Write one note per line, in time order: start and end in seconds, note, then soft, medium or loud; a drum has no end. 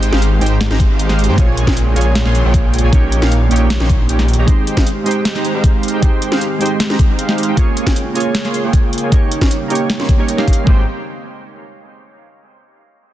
0.00 0.11 G#1 medium
0.00 1.35 D#3 medium
0.00 0.10 G#3 medium
0.00 0.39 G#3 medium
0.00 2.89 G#3 medium
0.00 0.40 C4 medium
0.00 1.35 C4 medium
0.00 0.10 D#4 medium
0.00 0.41 D#4 medium
0.00 0.10 G4 medium
0.00 0.42 G4 medium
0.00 1.35 G4 medium
0.00 0.10 C5 medium
0.00 0.43 C5 loud
0.00 0.10 G5 loud
0.00 closed hi-hat medium
0.12 0.39 G#1 medium
0.12 0.22 G#3 loud
0.12 0.22 D#4 medium
0.12 0.22 G4 medium
0.12 0.22 C5 medium
0.12 0.22 F5 loud
0.12 snare medium
0.22 closed hi-hat medium
0.39 0.69 G#1 medium
0.39 1.35 G#3 medium
0.39 0.51 G#3 medium
0.39 1.35 C4 medium
0.39 0.52 D#4 medium
0.39 1.36 D#4 medium
0.39 0.51 G4 medium
0.39 1.36 G4 medium
0.39 0.51 C5 medium
0.39 0.51 G5 loud
0.39 closed hi-hat soft
0.43 1.37 C5 medium
0.43 closed hi-hat medium
0.61 snare loud
0.61 closed hi-hat medium
0.71 0.88 G#1 loud
0.71 0.88 G#3 medium
0.71 0.88 D#4 medium
0.71 0.88 G4 medium
0.71 0.88 C5 medium
0.71 0.88 A#5 loud
0.71 snare medium
0.80 kick loud
0.80 closed hi-hat medium
0.90 1.30 G#1 loud
0.90 1.26 G#3 medium
0.90 1.26 D#4 medium
0.90 1.26 G4 medium
0.90 1.26 C5 medium
0.90 1.26 F5 medium
0.99 closed hi-hat medium
1.09 snare soft
1.19 closed hi-hat soft
1.24 closed hi-hat medium
1.29 1.39 G#2 loud
1.29 1.36 G#3 medium
1.29 1.36 D#4 medium
1.29 1.36 G4 medium
1.29 1.36 C5 medium
1.29 1.36 G5 medium
1.36 1.65 A#1 loud
1.36 2.91 C#3 medium
1.36 1.93 A#3 medium
1.36 4.45 A#3 medium
1.36 1.65 A#3 loud
1.36 1.93 C#4 medium
1.36 1.94 F4 medium
1.36 2.91 F4 medium
1.36 1.65 F4 medium
1.36 1.65 G#4 medium
1.36 1.94 G#4 medium
1.36 1.65 C#5 medium
1.36 1.65 G#5 loud
1.36 kick loud
1.36 closed hi-hat medium
1.40 1.95 C#5 medium
1.57 closed hi-hat medium
1.67 1.94 A#1 medium
1.67 1.77 A#3 loud
1.67 1.77 F4 medium
1.67 1.77 G#4 medium
1.67 1.77 C#5 medium
1.67 1.77 G5 loud
1.67 kick medium
1.67 snare medium
1.77 closed hi-hat medium
1.94 2.23 A#1 medium
1.94 2.90 A#3 medium
1.94 2.06 A#3 medium
1.94 2.90 C#4 medium
1.94 2.91 F4 medium
1.94 2.06 F4 medium
1.94 2.06 G#4 medium
1.94 2.91 G#4 medium
1.94 2.06 C#5 medium
1.94 2.92 C#5 loud
1.94 2.06 G#5 loud
1.94 closed hi-hat soft
2.01 closed hi-hat medium
2.15 snare loud
2.15 closed hi-hat medium
2.25 2.43 A#1 loud
2.25 2.43 A#3 medium
2.25 2.43 F4 medium
2.25 2.43 G#4 medium
2.25 2.43 C#5 medium
2.25 2.43 C6 loud
2.25 snare soft
2.35 closed hi-hat medium
2.45 2.81 A#1 loud
2.45 2.81 A#3 medium
2.45 2.81 F4 medium
2.45 2.81 G#4 medium
2.45 2.81 C#5 medium
2.45 2.81 G5 medium
2.54 kick loud
2.54 closed hi-hat medium
2.74 closed hi-hat soft
2.78 closed hi-hat medium
2.83 2.91 A#1 loud
2.83 2.91 A#3 medium
2.83 2.91 F4 medium
2.83 2.91 G#4 medium
2.83 2.91 C#5 medium
2.83 2.91 G#5 medium
2.91 3.20 A#1 medium
2.91 7.53 D#3 medium
2.91 3.48 A#3 medium
2.91 3.20 A#3 medium
2.91 3.48 C#4 medium
2.91 4.46 C#4 medium
2.91 3.49 D#4 medium
2.91 3.20 D#4 medium
2.91 7.53 G4 medium
2.91 3.20 G4 medium
2.91 3.49 G4 medium
2.91 3.20 C#5 medium
2.91 3.20 G5 loud
2.91 kick loud
2.91 closed hi-hat medium
2.95 3.50 C#5 loud
3.12 closed hi-hat medium
3.22 3.49 A#1 loud
3.22 3.32 A#3 loud
3.22 3.32 D#4 medium
3.22 3.32 G4 medium
3.22 3.32 C#5 medium
3.22 3.32 F5 loud
3.22 snare medium
3.32 closed hi-hat medium
3.49 3.78 A#1 medium
3.49 4.44 A#3 medium
3.49 3.61 A#3 medium
3.49 4.45 C#4 medium
3.49 4.45 D#4 medium
3.49 3.61 D#4 medium
3.49 3.61 G4 medium
3.49 4.46 G4 medium
3.49 3.61 C#5 medium
3.49 3.61 G5 loud
3.49 closed hi-hat soft
3.53 4.46 C#5 medium
3.53 closed hi-hat medium
3.70 snare loud
3.70 closed hi-hat medium
3.80 4.07 A#1 loud
3.80 3.98 A#3 medium
3.80 3.98 D#4 medium
3.80 3.98 G4 medium
3.80 3.98 C#5 medium
3.80 3.98 C6 loud
3.80 snare medium
3.90 kick loud
3.90 closed hi-hat medium
4.09 4.36 A#1 loud
4.09 4.19 A#3 medium
4.09 4.19 D#4 medium
4.09 4.19 G4 medium
4.09 4.19 C#5 medium
4.09 4.19 G5 medium
4.09 closed hi-hat medium
4.19 snare soft
4.28 closed hi-hat soft
4.33 closed hi-hat medium
4.38 4.46 A#1 loud
4.38 4.46 A#3 medium
4.38 4.46 D#4 medium
4.38 4.46 G4 medium
4.38 4.46 C#5 medium
4.38 4.46 A#5 loud
4.46 5.03 G#3 medium
4.46 4.75 G#3 medium
4.46 9.08 G#3 medium
4.46 5.03 C4 medium
4.46 7.54 C4 medium
4.46 4.75 D#4 medium
4.46 5.04 D#4 medium
4.46 4.75 G4 medium
4.46 5.04 G4 medium
4.46 4.75 C5 medium
4.46 4.75 G5 loud
4.46 kick loud
4.46 closed hi-hat medium
4.50 5.05 C5 medium
4.67 closed hi-hat medium
4.77 4.87 G#3 loud
4.77 4.87 D#4 medium
4.77 4.87 G4 medium
4.77 4.87 C5 medium
4.77 4.87 F5 loud
4.77 kick medium
4.77 snare medium
4.87 closed hi-hat medium
5.04 5.99 G#3 medium
5.04 5.16 G#3 medium
5.04 6.00 C4 medium
5.04 5.16 D#4 medium
5.04 6.00 D#4 medium
5.04 5.16 G4 medium
5.04 6.01 G4 medium
5.04 5.16 C5 medium
5.04 5.16 G5 loud
5.04 closed hi-hat soft
5.08 6.01 C5 medium
5.08 closed hi-hat medium
5.25 snare loud
5.25 closed hi-hat medium
5.35 5.52 G#3 loud
5.35 5.52 D#4 medium
5.35 5.52 G4 medium
5.35 5.52 C5 medium
5.35 5.52 A#5 loud
5.35 snare soft
5.45 closed hi-hat medium
5.54 5.91 G#3 medium
5.54 5.91 D#4 medium
5.54 5.91 G4 medium
5.54 5.91 C5 medium
5.54 5.91 F5 medium
5.64 kick loud
5.64 closed hi-hat medium
5.83 closed hi-hat soft
5.88 closed hi-hat medium
5.93 6.00 G#3 medium
5.93 6.00 D#4 medium
5.93 6.00 G4 medium
5.93 6.00 C5 medium
5.93 6.00 G5 medium
6.01 6.57 G#3 medium
6.01 6.29 G#3 loud
6.01 6.58 C4 medium
6.01 6.29 D#4 medium
6.01 6.58 D#4 medium
6.01 6.29 G4 medium
6.01 6.59 G4 medium
6.01 6.29 C5 medium
6.01 6.29 G5 loud
6.01 kick loud
6.01 closed hi-hat medium
6.05 6.59 C5 medium
6.22 closed hi-hat medium
6.32 6.42 G#3 loud
6.32 6.42 D#4 medium
6.32 6.42 G4 medium
6.32 6.42 C5 medium
6.32 6.42 F5 loud
6.32 snare medium
6.41 closed hi-hat medium
6.59 7.54 G#3 medium
6.59 6.71 G#3 medium
6.59 7.55 C4 medium
6.59 6.71 D#4 medium
6.59 7.55 D#4 medium
6.59 6.71 G4 medium
6.59 7.56 G4 medium
6.59 6.71 C5 medium
6.59 6.71 G5 loud
6.59 closed hi-hat soft
6.63 7.56 C5 medium
6.63 closed hi-hat medium
6.80 snare loud
6.80 closed hi-hat medium
6.90 7.07 G#3 medium
6.90 7.07 D#4 medium
6.90 7.07 G4 medium
6.90 7.07 C5 medium
6.90 7.07 A#5 loud
6.90 snare medium
6.99 kick loud
6.99 closed hi-hat medium
7.09 7.46 G#3 medium
7.09 7.46 D#4 medium
7.09 7.46 G4 medium
7.09 7.46 C5 medium
7.09 7.46 F5 medium
7.19 closed hi-hat medium
7.29 snare soft
7.38 closed hi-hat soft
7.43 closed hi-hat medium
7.48 7.55 G#3 medium
7.48 7.55 D#4 medium
7.48 7.55 G4 medium
7.48 7.55 C5 medium
7.48 7.55 G5 medium
7.55 10.64 C#3 medium
7.55 8.12 A#3 medium
7.55 10.64 A#3 medium
7.55 7.84 A#3 loud
7.55 8.13 C#4 medium
7.55 9.11 F4 medium
7.55 7.84 F4 medium
7.55 8.13 F4 medium
7.55 7.84 G#4 medium
7.55 8.14 G#4 medium
7.55 7.84 C#5 medium
7.55 8.14 C#5 loud
7.55 7.84 G#5 loud
7.55 kick loud
7.55 closed hi-hat medium
7.77 closed hi-hat medium
7.87 7.96 A#3 medium
7.87 7.96 F4 medium
7.87 7.96 G#4 medium
7.87 7.96 C#5 medium
7.87 7.96 G5 loud
7.87 kick medium
7.87 snare medium
7.96 closed hi-hat medium
8.13 9.09 A#3 medium
8.13 8.26 A#3 medium
8.13 9.09 C#4 medium
8.13 9.10 F4 medium
8.13 8.26 F4 medium
8.13 8.26 G#4 medium
8.13 9.10 G#4 medium
8.13 8.26 C#5 medium
8.13 9.11 C#5 medium
8.13 8.26 G#5 loud
8.13 closed hi-hat medium
8.20 closed hi-hat medium
8.35 snare loud
8.35 closed hi-hat medium
8.45 8.62 A#3 medium
8.45 8.62 F4 medium
8.45 8.62 G#4 medium
8.45 8.62 C#5 medium
8.45 8.62 C6 loud
8.45 snare soft
8.54 closed hi-hat medium
8.64 9.00 A#3 medium
8.64 9.00 F4 medium
8.64 9.00 G#4 medium
8.64 9.00 C#5 medium
8.64 9.00 G5 medium
8.73 kick loud
8.73 closed hi-hat medium
8.93 closed hi-hat medium
8.98 closed hi-hat medium
9.03 9.10 A#3 medium
9.03 9.10 F4 medium
9.03 9.10 G#4 medium
9.03 9.10 C#5 medium
9.03 9.10 G#5 medium
9.10 10.65 G3 medium
9.10 9.67 A#3 medium
9.10 9.39 A#3 loud
9.10 9.67 C#4 medium
9.10 10.65 D#4 medium
9.10 9.68 D#4 medium
9.10 9.39 D#4 medium
9.10 9.39 G4 medium
9.10 9.68 G4 medium
9.10 9.39 C#5 medium
9.10 9.39 G5 loud
9.10 kick loud
9.10 closed hi-hat medium
9.14 9.69 C#5 medium
9.32 closed hi-hat medium
9.41 9.51 A#3 loud
9.41 9.51 D#4 medium
9.41 9.51 G4 medium
9.41 9.51 C#5 medium
9.41 9.51 F5 loud
9.41 kick medium
9.41 snare medium
9.51 closed hi-hat medium
9.68 10.16 A#3 medium
9.68 9.81 A#3 medium
9.68 10.16 C#4 medium
9.68 10.17 D#4 medium
9.68 9.81 D#4 medium
9.68 9.81 G4 medium
9.68 10.17 G4 medium
9.68 9.81 C#5 medium
9.68 10.18 C#5 medium
9.68 9.81 G5 loud
9.68 closed hi-hat soft
9.75 closed hi-hat medium
9.90 snare loud
9.90 closed hi-hat medium
10.00 10.17 A#3 medium
10.00 10.17 D#4 medium
10.00 10.17 G4 medium
10.00 10.17 C#5 medium
10.00 10.17 C6 loud
10.00 snare medium
10.09 kick loud
10.09 closed hi-hat medium
10.18 10.35 A#3 medium
10.18 10.36 C#4 medium
10.18 10.36 D#4 medium
10.18 10.36 G4 medium
10.18 10.36 C#5 medium
10.28 10.39 A#3 medium
10.28 10.39 D#4 medium
10.28 10.39 G4 medium
10.28 10.39 C#5 medium
10.28 10.39 G5 medium
10.28 closed hi-hat medium
10.37 10.64 A#3 medium
10.37 10.65 C#4 medium
10.37 10.65 D#4 medium
10.37 10.65 G4 medium
10.37 10.65 F5 loud
10.37 snare soft
10.48 kick medium
10.48 closed hi-hat soft
10.53 closed hi-hat medium
10.58 10.66 A#3 medium
10.58 10.66 D#4 medium
10.58 10.66 G4 medium
10.58 10.66 C#5 medium
10.58 10.66 A#5 loud
10.64 10.85 G#1 medium
10.64 10.80 G#3 medium
10.64 10.82 G#3 medium
10.64 10.81 C4 medium
10.64 10.82 D#4 medium
10.64 10.82 G4 medium
10.64 10.82 C5 medium
10.64 10.82 G5 loud
10.64 kick loud
10.68 10.82 G4 medium
10.68 10.83 C5 medium